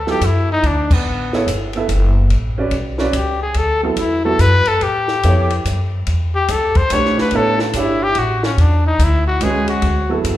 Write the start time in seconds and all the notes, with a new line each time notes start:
Already playing: D2
0.07 F#3 B3 E4 G4 A4, snare
0.21 F#2, kick, hi-hat pedal, ride
0.25 E4
0.52 D#4
0.63 D2 D4, kick, ride
0.91 B3, kick, crash
1.05 A1
1.33 B3 E4 A4 C#5, snare
1.46 G1, kick, hi-hat pedal, ride
1.73 B3 E4 A4, ride
1.77 E5
1.88 F#1, kick, hi-hat pedal, ride
2.30 A1, kick, ride
2.58 C#4 F#4 B4 D5
2.71 B1, kick, ride
2.98 C#4 F#4 B4 D5, snare
3.13 C#2 G4, kick, hi-hat pedal, ride
3.42 G#4
3.54 D2 A4, kick, ride
3.83 F#3 B3 C4 E4 A4
3.96 E2 E4, kick, hi-hat pedal, ride
4.25 F#3 B3 E4 F#4 A4
4.39 F#2 B4, kick, hi-hat pedal, ride
4.65 A4, muted upright bass stroke, ride
4.81 A2 G4, kick, ride
5.08 snare
5.23 F2 B3 E4 A4 C#5, kick, hi-hat pedal, ride
5.50 ride
5.65 F#2, kick, hi-hat pedal, ride
6.07 E2, kick, ride
6.35 G4
6.48 C#2 A4, kick, hi-hat pedal, ride
6.75 C5, muted upright bass stroke, kick, ride
6.90 B1 A3 D4 G4 B4 C#5, kick, hi-hat pedal, ride
7.05 snare
7.16 B4, muted upright bass stroke, snare
7.31 A1 B3 E4, kick, ride
7.35 A4 C#5
7.59 C#4, snare
7.73 G1 D4 E4 G4 C#5 E5, kick, hi-hat pedal, ride
8.03 G4
8.15 A1 F#4, kick, ride
8.43 C#4, snare
8.57 E2 D4, kick, ride
8.87 D#4
8.99 D2, kick, hi-hat pedal, ride
9.04 E4
9.28 F#4
9.41 C#2 G#3 C#4 F#4 G#4 B4, kick, hi-hat pedal, ride
9.68 F#4, ride
9.82 D2, kick, ride
10.09 F#3 B3 E4 A4
10.24 F#2, kick, hi-hat pedal, ride